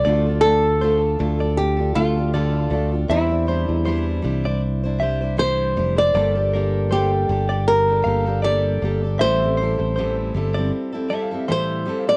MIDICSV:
0, 0, Header, 1, 6, 480
1, 0, Start_track
1, 0, Key_signature, -1, "minor"
1, 0, Tempo, 761808
1, 31, Time_signature, 4, 2, 24, 8
1, 7667, End_track
2, 0, Start_track
2, 0, Title_t, "Clean electric guitar"
2, 0, Program_c, 0, 27
2, 30, Note_on_c, 0, 74, 90
2, 259, Note_off_c, 0, 74, 0
2, 265, Note_on_c, 0, 69, 73
2, 496, Note_off_c, 0, 69, 0
2, 513, Note_on_c, 0, 72, 77
2, 637, Note_off_c, 0, 72, 0
2, 885, Note_on_c, 0, 74, 62
2, 987, Note_off_c, 0, 74, 0
2, 1235, Note_on_c, 0, 77, 83
2, 1461, Note_off_c, 0, 77, 0
2, 1474, Note_on_c, 0, 74, 75
2, 1822, Note_off_c, 0, 74, 0
2, 1950, Note_on_c, 0, 76, 97
2, 2179, Note_off_c, 0, 76, 0
2, 2193, Note_on_c, 0, 72, 78
2, 2420, Note_off_c, 0, 72, 0
2, 2430, Note_on_c, 0, 72, 79
2, 2556, Note_off_c, 0, 72, 0
2, 2807, Note_on_c, 0, 74, 75
2, 2907, Note_off_c, 0, 74, 0
2, 3151, Note_on_c, 0, 76, 75
2, 3379, Note_off_c, 0, 76, 0
2, 3394, Note_on_c, 0, 72, 77
2, 3742, Note_off_c, 0, 72, 0
2, 3875, Note_on_c, 0, 74, 83
2, 4101, Note_off_c, 0, 74, 0
2, 4118, Note_on_c, 0, 70, 75
2, 4343, Note_off_c, 0, 70, 0
2, 4352, Note_on_c, 0, 72, 79
2, 4477, Note_off_c, 0, 72, 0
2, 4719, Note_on_c, 0, 74, 68
2, 4823, Note_off_c, 0, 74, 0
2, 5064, Note_on_c, 0, 77, 75
2, 5295, Note_off_c, 0, 77, 0
2, 5306, Note_on_c, 0, 74, 76
2, 5658, Note_off_c, 0, 74, 0
2, 5791, Note_on_c, 0, 76, 97
2, 6019, Note_off_c, 0, 76, 0
2, 6031, Note_on_c, 0, 72, 80
2, 6259, Note_off_c, 0, 72, 0
2, 6274, Note_on_c, 0, 72, 77
2, 6398, Note_off_c, 0, 72, 0
2, 6643, Note_on_c, 0, 74, 70
2, 6746, Note_off_c, 0, 74, 0
2, 6996, Note_on_c, 0, 76, 79
2, 7221, Note_off_c, 0, 76, 0
2, 7235, Note_on_c, 0, 72, 75
2, 7583, Note_off_c, 0, 72, 0
2, 7667, End_track
3, 0, Start_track
3, 0, Title_t, "Nylon-string guitar"
3, 0, Program_c, 1, 24
3, 0, Note_on_c, 1, 74, 91
3, 255, Note_off_c, 1, 74, 0
3, 258, Note_on_c, 1, 69, 106
3, 959, Note_off_c, 1, 69, 0
3, 992, Note_on_c, 1, 67, 87
3, 1215, Note_off_c, 1, 67, 0
3, 1231, Note_on_c, 1, 65, 89
3, 1955, Note_off_c, 1, 65, 0
3, 1957, Note_on_c, 1, 64, 78
3, 2889, Note_off_c, 1, 64, 0
3, 3398, Note_on_c, 1, 72, 93
3, 3768, Note_off_c, 1, 72, 0
3, 3770, Note_on_c, 1, 74, 100
3, 4362, Note_on_c, 1, 67, 80
3, 4372, Note_off_c, 1, 74, 0
3, 4837, Note_on_c, 1, 70, 97
3, 4850, Note_off_c, 1, 67, 0
3, 5317, Note_off_c, 1, 70, 0
3, 5319, Note_on_c, 1, 74, 85
3, 5799, Note_off_c, 1, 74, 0
3, 5801, Note_on_c, 1, 72, 94
3, 7211, Note_off_c, 1, 72, 0
3, 7257, Note_on_c, 1, 72, 88
3, 7614, Note_off_c, 1, 72, 0
3, 7617, Note_on_c, 1, 74, 95
3, 7667, Note_off_c, 1, 74, 0
3, 7667, End_track
4, 0, Start_track
4, 0, Title_t, "Grand piano"
4, 0, Program_c, 2, 0
4, 0, Control_c, 2, 64, 127
4, 24, Note_on_c, 2, 57, 67
4, 35, Note_on_c, 2, 62, 63
4, 39, Control_c, 2, 64, 0
4, 45, Note_on_c, 2, 64, 48
4, 53, Note_on_c, 2, 74, 77
4, 83, Note_off_c, 2, 64, 0
4, 85, Note_on_c, 2, 65, 63
4, 147, Control_c, 2, 64, 127
4, 1682, Note_off_c, 2, 57, 0
4, 1688, Note_off_c, 2, 62, 0
4, 1697, Note_off_c, 2, 74, 0
4, 1708, Note_off_c, 2, 65, 0
4, 1710, Note_on_c, 2, 57, 46
4, 1715, Note_on_c, 2, 62, 44
4, 1717, Note_on_c, 2, 65, 41
4, 1722, Note_on_c, 2, 74, 55
4, 1947, Note_on_c, 2, 60, 68
4, 1951, Note_off_c, 2, 57, 0
4, 1953, Note_off_c, 2, 62, 0
4, 1954, Note_off_c, 2, 65, 0
4, 1955, Note_on_c, 2, 64, 62
4, 1957, Note_off_c, 2, 74, 0
4, 1958, Control_c, 2, 64, 0
4, 1961, Note_on_c, 2, 67, 59
4, 1970, Note_on_c, 2, 74, 78
4, 2054, Control_c, 2, 64, 127
4, 3844, Note_off_c, 2, 60, 0
4, 3847, Note_off_c, 2, 64, 0
4, 3851, Note_off_c, 2, 67, 0
4, 3855, Note_off_c, 2, 74, 0
4, 3865, Note_on_c, 2, 58, 66
4, 3869, Note_on_c, 2, 67, 63
4, 3878, Control_c, 2, 64, 0
4, 3878, Note_on_c, 2, 81, 64
4, 3888, Note_on_c, 2, 74, 73
4, 3970, Control_c, 2, 64, 127
4, 5762, Note_off_c, 2, 58, 0
4, 5765, Note_off_c, 2, 67, 0
4, 5769, Note_off_c, 2, 81, 0
4, 5774, Note_off_c, 2, 74, 0
4, 5784, Note_on_c, 2, 60, 71
4, 5795, Note_on_c, 2, 67, 62
4, 5799, Control_c, 2, 64, 0
4, 5803, Note_on_c, 2, 69, 61
4, 5812, Note_on_c, 2, 76, 78
4, 5913, Control_c, 2, 64, 127
4, 7000, Note_on_c, 2, 81, 60
4, 7070, Note_off_c, 2, 81, 0
4, 7073, Note_on_c, 2, 77, 67
4, 7221, Note_off_c, 2, 77, 0
4, 7227, Note_off_c, 2, 76, 0
4, 7236, Note_on_c, 2, 76, 67
4, 7531, Note_off_c, 2, 76, 0
4, 7556, Note_on_c, 2, 77, 63
4, 7667, Note_off_c, 2, 60, 0
4, 7667, Note_off_c, 2, 67, 0
4, 7667, Note_off_c, 2, 69, 0
4, 7667, Note_off_c, 2, 77, 0
4, 7667, End_track
5, 0, Start_track
5, 0, Title_t, "Steel-string acoustic guitar"
5, 0, Program_c, 3, 25
5, 29, Note_on_c, 3, 50, 75
5, 36, Note_on_c, 3, 57, 73
5, 40, Note_on_c, 3, 62, 76
5, 42, Note_on_c, 3, 69, 78
5, 44, Note_on_c, 3, 65, 81
5, 158, Note_off_c, 3, 69, 0
5, 162, Note_off_c, 3, 50, 0
5, 166, Note_off_c, 3, 57, 0
5, 166, Note_on_c, 3, 69, 48
5, 168, Note_off_c, 3, 62, 0
5, 170, Note_off_c, 3, 65, 0
5, 180, Note_on_c, 3, 65, 44
5, 187, Note_on_c, 3, 62, 43
5, 272, Note_off_c, 3, 69, 0
5, 273, Note_off_c, 3, 62, 0
5, 277, Note_off_c, 3, 65, 0
5, 277, Note_on_c, 3, 57, 61
5, 281, Note_on_c, 3, 62, 58
5, 285, Note_on_c, 3, 65, 66
5, 290, Note_on_c, 3, 69, 69
5, 514, Note_off_c, 3, 57, 0
5, 516, Note_off_c, 3, 62, 0
5, 516, Note_on_c, 3, 50, 70
5, 518, Note_off_c, 3, 65, 0
5, 521, Note_off_c, 3, 69, 0
5, 523, Note_on_c, 3, 57, 72
5, 525, Note_on_c, 3, 62, 75
5, 527, Note_on_c, 3, 65, 78
5, 531, Note_on_c, 3, 69, 81
5, 743, Note_off_c, 3, 57, 0
5, 747, Note_off_c, 3, 62, 0
5, 750, Note_on_c, 3, 57, 66
5, 753, Note_off_c, 3, 50, 0
5, 754, Note_off_c, 3, 65, 0
5, 755, Note_on_c, 3, 62, 69
5, 758, Note_off_c, 3, 69, 0
5, 762, Note_on_c, 3, 65, 69
5, 766, Note_on_c, 3, 69, 64
5, 873, Note_off_c, 3, 69, 0
5, 881, Note_on_c, 3, 69, 51
5, 883, Note_off_c, 3, 57, 0
5, 883, Note_off_c, 3, 65, 0
5, 885, Note_off_c, 3, 62, 0
5, 891, Note_on_c, 3, 65, 49
5, 894, Note_on_c, 3, 62, 40
5, 1106, Note_off_c, 3, 69, 0
5, 1113, Note_on_c, 3, 69, 58
5, 1118, Note_off_c, 3, 65, 0
5, 1126, Note_on_c, 3, 65, 53
5, 1129, Note_off_c, 3, 62, 0
5, 1135, Note_on_c, 3, 62, 46
5, 1226, Note_off_c, 3, 69, 0
5, 1230, Note_off_c, 3, 62, 0
5, 1231, Note_on_c, 3, 57, 66
5, 1232, Note_off_c, 3, 65, 0
5, 1237, Note_on_c, 3, 62, 67
5, 1244, Note_on_c, 3, 65, 61
5, 1249, Note_on_c, 3, 69, 70
5, 1354, Note_off_c, 3, 69, 0
5, 1362, Note_on_c, 3, 69, 54
5, 1363, Note_off_c, 3, 57, 0
5, 1364, Note_off_c, 3, 65, 0
5, 1366, Note_off_c, 3, 62, 0
5, 1371, Note_on_c, 3, 65, 47
5, 1378, Note_on_c, 3, 62, 48
5, 1469, Note_off_c, 3, 65, 0
5, 1470, Note_off_c, 3, 62, 0
5, 1470, Note_off_c, 3, 69, 0
5, 1471, Note_on_c, 3, 50, 77
5, 1473, Note_on_c, 3, 57, 72
5, 1476, Note_on_c, 3, 65, 79
5, 1478, Note_on_c, 3, 62, 78
5, 1479, Note_on_c, 3, 69, 86
5, 1693, Note_off_c, 3, 57, 0
5, 1701, Note_on_c, 3, 57, 60
5, 1706, Note_off_c, 3, 62, 0
5, 1711, Note_off_c, 3, 50, 0
5, 1711, Note_off_c, 3, 65, 0
5, 1711, Note_off_c, 3, 69, 0
5, 1714, Note_on_c, 3, 62, 62
5, 1719, Note_on_c, 3, 65, 65
5, 1719, Note_on_c, 3, 69, 67
5, 1829, Note_off_c, 3, 69, 0
5, 1837, Note_on_c, 3, 69, 44
5, 1838, Note_off_c, 3, 57, 0
5, 1838, Note_off_c, 3, 65, 0
5, 1844, Note_off_c, 3, 62, 0
5, 1846, Note_on_c, 3, 65, 45
5, 1858, Note_on_c, 3, 62, 42
5, 1945, Note_off_c, 3, 62, 0
5, 1946, Note_on_c, 3, 52, 72
5, 1948, Note_off_c, 3, 69, 0
5, 1949, Note_on_c, 3, 55, 73
5, 1952, Note_off_c, 3, 65, 0
5, 1953, Note_on_c, 3, 62, 73
5, 1955, Note_on_c, 3, 72, 84
5, 1957, Note_on_c, 3, 64, 73
5, 2064, Note_off_c, 3, 72, 0
5, 2072, Note_on_c, 3, 72, 53
5, 2074, Note_off_c, 3, 64, 0
5, 2081, Note_off_c, 3, 52, 0
5, 2081, Note_on_c, 3, 64, 49
5, 2082, Note_off_c, 3, 55, 0
5, 2082, Note_off_c, 3, 62, 0
5, 2089, Note_on_c, 3, 62, 42
5, 2184, Note_on_c, 3, 55, 63
5, 2185, Note_off_c, 3, 62, 0
5, 2185, Note_off_c, 3, 72, 0
5, 2188, Note_off_c, 3, 64, 0
5, 2192, Note_on_c, 3, 62, 60
5, 2196, Note_on_c, 3, 64, 67
5, 2198, Note_on_c, 3, 72, 67
5, 2426, Note_on_c, 3, 52, 76
5, 2427, Note_off_c, 3, 55, 0
5, 2427, Note_off_c, 3, 64, 0
5, 2428, Note_off_c, 3, 62, 0
5, 2433, Note_off_c, 3, 72, 0
5, 2434, Note_on_c, 3, 55, 78
5, 2435, Note_on_c, 3, 62, 76
5, 2435, Note_on_c, 3, 64, 84
5, 2441, Note_on_c, 3, 72, 86
5, 2653, Note_off_c, 3, 55, 0
5, 2660, Note_on_c, 3, 55, 72
5, 2663, Note_off_c, 3, 62, 0
5, 2664, Note_off_c, 3, 64, 0
5, 2668, Note_off_c, 3, 52, 0
5, 2670, Note_on_c, 3, 62, 74
5, 2671, Note_off_c, 3, 72, 0
5, 2672, Note_on_c, 3, 64, 72
5, 2679, Note_on_c, 3, 72, 72
5, 2798, Note_off_c, 3, 55, 0
5, 2798, Note_off_c, 3, 72, 0
5, 2802, Note_off_c, 3, 62, 0
5, 2803, Note_off_c, 3, 64, 0
5, 2805, Note_on_c, 3, 72, 58
5, 2812, Note_on_c, 3, 64, 57
5, 2823, Note_on_c, 3, 62, 50
5, 3040, Note_off_c, 3, 72, 0
5, 3047, Note_off_c, 3, 64, 0
5, 3048, Note_on_c, 3, 72, 61
5, 3053, Note_off_c, 3, 62, 0
5, 3058, Note_on_c, 3, 64, 62
5, 3063, Note_on_c, 3, 62, 51
5, 3148, Note_off_c, 3, 62, 0
5, 3152, Note_on_c, 3, 55, 70
5, 3153, Note_off_c, 3, 72, 0
5, 3155, Note_off_c, 3, 64, 0
5, 3156, Note_on_c, 3, 62, 70
5, 3162, Note_on_c, 3, 64, 70
5, 3167, Note_on_c, 3, 72, 76
5, 3275, Note_off_c, 3, 72, 0
5, 3282, Note_on_c, 3, 72, 58
5, 3283, Note_off_c, 3, 55, 0
5, 3285, Note_off_c, 3, 62, 0
5, 3286, Note_off_c, 3, 64, 0
5, 3293, Note_on_c, 3, 64, 48
5, 3298, Note_on_c, 3, 62, 48
5, 3384, Note_off_c, 3, 62, 0
5, 3384, Note_on_c, 3, 52, 71
5, 3385, Note_off_c, 3, 64, 0
5, 3390, Note_on_c, 3, 55, 83
5, 3391, Note_off_c, 3, 72, 0
5, 3391, Note_on_c, 3, 62, 78
5, 3392, Note_on_c, 3, 64, 83
5, 3398, Note_on_c, 3, 72, 81
5, 3624, Note_off_c, 3, 55, 0
5, 3627, Note_off_c, 3, 52, 0
5, 3629, Note_off_c, 3, 62, 0
5, 3631, Note_on_c, 3, 55, 55
5, 3632, Note_off_c, 3, 64, 0
5, 3634, Note_off_c, 3, 72, 0
5, 3637, Note_on_c, 3, 62, 65
5, 3641, Note_on_c, 3, 64, 64
5, 3648, Note_on_c, 3, 72, 72
5, 3753, Note_off_c, 3, 72, 0
5, 3761, Note_on_c, 3, 72, 51
5, 3763, Note_off_c, 3, 55, 0
5, 3764, Note_off_c, 3, 64, 0
5, 3766, Note_off_c, 3, 62, 0
5, 3772, Note_on_c, 3, 64, 46
5, 3870, Note_off_c, 3, 72, 0
5, 3872, Note_on_c, 3, 55, 81
5, 3875, Note_off_c, 3, 64, 0
5, 3875, Note_on_c, 3, 58, 77
5, 3877, Note_on_c, 3, 62, 73
5, 3882, Note_on_c, 3, 67, 80
5, 3888, Note_on_c, 3, 69, 88
5, 3994, Note_off_c, 3, 69, 0
5, 4002, Note_off_c, 3, 67, 0
5, 4002, Note_on_c, 3, 69, 55
5, 4003, Note_off_c, 3, 55, 0
5, 4005, Note_off_c, 3, 58, 0
5, 4006, Note_off_c, 3, 62, 0
5, 4009, Note_on_c, 3, 67, 46
5, 4017, Note_on_c, 3, 62, 44
5, 4110, Note_off_c, 3, 69, 0
5, 4114, Note_off_c, 3, 67, 0
5, 4115, Note_on_c, 3, 58, 57
5, 4118, Note_off_c, 3, 62, 0
5, 4125, Note_on_c, 3, 62, 64
5, 4131, Note_on_c, 3, 67, 62
5, 4135, Note_on_c, 3, 69, 69
5, 4350, Note_off_c, 3, 58, 0
5, 4354, Note_on_c, 3, 55, 76
5, 4356, Note_off_c, 3, 67, 0
5, 4357, Note_on_c, 3, 58, 71
5, 4358, Note_off_c, 3, 62, 0
5, 4359, Note_off_c, 3, 69, 0
5, 4363, Note_on_c, 3, 67, 77
5, 4364, Note_on_c, 3, 62, 74
5, 4367, Note_on_c, 3, 69, 89
5, 4586, Note_off_c, 3, 58, 0
5, 4591, Note_off_c, 3, 62, 0
5, 4592, Note_off_c, 3, 55, 0
5, 4593, Note_on_c, 3, 58, 62
5, 4597, Note_off_c, 3, 67, 0
5, 4598, Note_on_c, 3, 62, 61
5, 4599, Note_off_c, 3, 69, 0
5, 4607, Note_on_c, 3, 67, 62
5, 4611, Note_on_c, 3, 69, 64
5, 4709, Note_off_c, 3, 69, 0
5, 4717, Note_off_c, 3, 67, 0
5, 4717, Note_on_c, 3, 69, 51
5, 4724, Note_off_c, 3, 58, 0
5, 4725, Note_on_c, 3, 67, 50
5, 4726, Note_off_c, 3, 62, 0
5, 4734, Note_on_c, 3, 62, 39
5, 4954, Note_off_c, 3, 69, 0
5, 4961, Note_on_c, 3, 69, 57
5, 4962, Note_off_c, 3, 67, 0
5, 4968, Note_off_c, 3, 62, 0
5, 4969, Note_on_c, 3, 67, 47
5, 4981, Note_on_c, 3, 62, 47
5, 5068, Note_off_c, 3, 62, 0
5, 5070, Note_off_c, 3, 69, 0
5, 5070, Note_on_c, 3, 58, 63
5, 5074, Note_off_c, 3, 67, 0
5, 5075, Note_on_c, 3, 62, 64
5, 5083, Note_on_c, 3, 67, 64
5, 5086, Note_on_c, 3, 69, 64
5, 5196, Note_off_c, 3, 69, 0
5, 5202, Note_off_c, 3, 58, 0
5, 5203, Note_off_c, 3, 67, 0
5, 5203, Note_on_c, 3, 69, 52
5, 5205, Note_off_c, 3, 62, 0
5, 5210, Note_on_c, 3, 67, 56
5, 5220, Note_on_c, 3, 62, 46
5, 5311, Note_off_c, 3, 62, 0
5, 5311, Note_off_c, 3, 69, 0
5, 5314, Note_off_c, 3, 67, 0
5, 5314, Note_on_c, 3, 55, 76
5, 5319, Note_on_c, 3, 58, 77
5, 5319, Note_on_c, 3, 62, 79
5, 5325, Note_on_c, 3, 67, 79
5, 5326, Note_on_c, 3, 69, 85
5, 5546, Note_off_c, 3, 58, 0
5, 5552, Note_off_c, 3, 55, 0
5, 5554, Note_on_c, 3, 58, 62
5, 5555, Note_off_c, 3, 62, 0
5, 5558, Note_off_c, 3, 67, 0
5, 5558, Note_off_c, 3, 69, 0
5, 5564, Note_on_c, 3, 62, 61
5, 5571, Note_on_c, 3, 67, 69
5, 5574, Note_on_c, 3, 69, 76
5, 5684, Note_off_c, 3, 58, 0
5, 5687, Note_off_c, 3, 69, 0
5, 5689, Note_off_c, 3, 62, 0
5, 5693, Note_off_c, 3, 67, 0
5, 5694, Note_on_c, 3, 69, 51
5, 5700, Note_on_c, 3, 67, 49
5, 5710, Note_on_c, 3, 62, 42
5, 5797, Note_off_c, 3, 69, 0
5, 5800, Note_off_c, 3, 67, 0
5, 5800, Note_on_c, 3, 45, 72
5, 5802, Note_on_c, 3, 52, 66
5, 5803, Note_on_c, 3, 55, 76
5, 5804, Note_off_c, 3, 62, 0
5, 5807, Note_on_c, 3, 60, 83
5, 5810, Note_on_c, 3, 64, 79
5, 5811, Note_on_c, 3, 69, 80
5, 5926, Note_off_c, 3, 69, 0
5, 5928, Note_off_c, 3, 45, 0
5, 5928, Note_off_c, 3, 52, 0
5, 5929, Note_off_c, 3, 55, 0
5, 5931, Note_off_c, 3, 60, 0
5, 5932, Note_off_c, 3, 64, 0
5, 5933, Note_on_c, 3, 69, 50
5, 5941, Note_on_c, 3, 64, 49
5, 5946, Note_on_c, 3, 60, 44
5, 5950, Note_on_c, 3, 55, 45
5, 6036, Note_off_c, 3, 69, 0
5, 6040, Note_off_c, 3, 55, 0
5, 6040, Note_off_c, 3, 64, 0
5, 6042, Note_off_c, 3, 60, 0
5, 6047, Note_on_c, 3, 55, 62
5, 6055, Note_on_c, 3, 60, 57
5, 6063, Note_on_c, 3, 64, 58
5, 6065, Note_on_c, 3, 69, 63
5, 6279, Note_off_c, 3, 55, 0
5, 6282, Note_off_c, 3, 64, 0
5, 6283, Note_off_c, 3, 60, 0
5, 6284, Note_on_c, 3, 45, 69
5, 6285, Note_off_c, 3, 69, 0
5, 6289, Note_on_c, 3, 52, 78
5, 6290, Note_on_c, 3, 64, 83
5, 6291, Note_on_c, 3, 60, 84
5, 6292, Note_on_c, 3, 55, 78
5, 6292, Note_on_c, 3, 69, 80
5, 6509, Note_off_c, 3, 55, 0
5, 6516, Note_off_c, 3, 60, 0
5, 6516, Note_on_c, 3, 55, 70
5, 6518, Note_off_c, 3, 45, 0
5, 6520, Note_off_c, 3, 52, 0
5, 6520, Note_off_c, 3, 64, 0
5, 6521, Note_off_c, 3, 69, 0
5, 6524, Note_on_c, 3, 60, 65
5, 6529, Note_on_c, 3, 64, 70
5, 6532, Note_on_c, 3, 69, 77
5, 6642, Note_off_c, 3, 69, 0
5, 6645, Note_off_c, 3, 55, 0
5, 6648, Note_off_c, 3, 64, 0
5, 6649, Note_off_c, 3, 60, 0
5, 6650, Note_on_c, 3, 69, 64
5, 6656, Note_on_c, 3, 64, 55
5, 6666, Note_on_c, 3, 60, 55
5, 6670, Note_on_c, 3, 55, 49
5, 6877, Note_off_c, 3, 69, 0
5, 6885, Note_on_c, 3, 69, 63
5, 6887, Note_off_c, 3, 64, 0
5, 6892, Note_off_c, 3, 60, 0
5, 6895, Note_off_c, 3, 55, 0
5, 6895, Note_on_c, 3, 64, 59
5, 6900, Note_on_c, 3, 60, 53
5, 6902, Note_on_c, 3, 55, 49
5, 6984, Note_off_c, 3, 55, 0
5, 6992, Note_off_c, 3, 69, 0
5, 6992, Note_on_c, 3, 55, 66
5, 6993, Note_off_c, 3, 60, 0
5, 6997, Note_off_c, 3, 64, 0
5, 7001, Note_on_c, 3, 60, 71
5, 7010, Note_on_c, 3, 64, 74
5, 7012, Note_on_c, 3, 69, 75
5, 7120, Note_off_c, 3, 69, 0
5, 7123, Note_off_c, 3, 55, 0
5, 7127, Note_off_c, 3, 64, 0
5, 7128, Note_off_c, 3, 60, 0
5, 7128, Note_on_c, 3, 69, 57
5, 7135, Note_on_c, 3, 64, 53
5, 7141, Note_on_c, 3, 60, 49
5, 7147, Note_on_c, 3, 55, 51
5, 7230, Note_off_c, 3, 55, 0
5, 7233, Note_off_c, 3, 69, 0
5, 7234, Note_on_c, 3, 52, 80
5, 7235, Note_off_c, 3, 60, 0
5, 7236, Note_on_c, 3, 45, 90
5, 7237, Note_off_c, 3, 64, 0
5, 7238, Note_on_c, 3, 55, 88
5, 7242, Note_on_c, 3, 60, 83
5, 7244, Note_on_c, 3, 64, 93
5, 7247, Note_on_c, 3, 69, 85
5, 7463, Note_off_c, 3, 55, 0
5, 7470, Note_off_c, 3, 60, 0
5, 7470, Note_on_c, 3, 55, 66
5, 7473, Note_off_c, 3, 52, 0
5, 7474, Note_off_c, 3, 45, 0
5, 7477, Note_off_c, 3, 64, 0
5, 7477, Note_on_c, 3, 60, 69
5, 7479, Note_off_c, 3, 69, 0
5, 7485, Note_on_c, 3, 64, 75
5, 7491, Note_on_c, 3, 69, 75
5, 7599, Note_off_c, 3, 69, 0
5, 7602, Note_off_c, 3, 55, 0
5, 7604, Note_off_c, 3, 64, 0
5, 7606, Note_off_c, 3, 60, 0
5, 7606, Note_on_c, 3, 69, 54
5, 7612, Note_on_c, 3, 64, 50
5, 7621, Note_on_c, 3, 60, 46
5, 7624, Note_on_c, 3, 55, 46
5, 7667, Note_off_c, 3, 55, 0
5, 7667, Note_off_c, 3, 60, 0
5, 7667, Note_off_c, 3, 64, 0
5, 7667, Note_off_c, 3, 69, 0
5, 7667, End_track
6, 0, Start_track
6, 0, Title_t, "Fingered electric bass"
6, 0, Program_c, 4, 33
6, 36, Note_on_c, 4, 38, 106
6, 728, Note_off_c, 4, 38, 0
6, 757, Note_on_c, 4, 38, 115
6, 1209, Note_off_c, 4, 38, 0
6, 1233, Note_on_c, 4, 38, 92
6, 1687, Note_off_c, 4, 38, 0
6, 1706, Note_on_c, 4, 38, 95
6, 1929, Note_off_c, 4, 38, 0
6, 1948, Note_on_c, 4, 40, 101
6, 2296, Note_off_c, 4, 40, 0
6, 2324, Note_on_c, 4, 40, 86
6, 2646, Note_off_c, 4, 40, 0
6, 2675, Note_on_c, 4, 36, 102
6, 3636, Note_on_c, 4, 29, 91
6, 3645, Note_off_c, 4, 36, 0
6, 3854, Note_off_c, 4, 29, 0
6, 3872, Note_on_c, 4, 31, 109
6, 4566, Note_off_c, 4, 31, 0
6, 4595, Note_on_c, 4, 31, 108
6, 5047, Note_off_c, 4, 31, 0
6, 5079, Note_on_c, 4, 31, 87
6, 5530, Note_off_c, 4, 31, 0
6, 5558, Note_on_c, 4, 31, 94
6, 5776, Note_off_c, 4, 31, 0
6, 5796, Note_on_c, 4, 33, 102
6, 6140, Note_off_c, 4, 33, 0
6, 6171, Note_on_c, 4, 33, 80
6, 6490, Note_off_c, 4, 33, 0
6, 6518, Note_on_c, 4, 31, 87
6, 6743, Note_off_c, 4, 31, 0
6, 7667, End_track
0, 0, End_of_file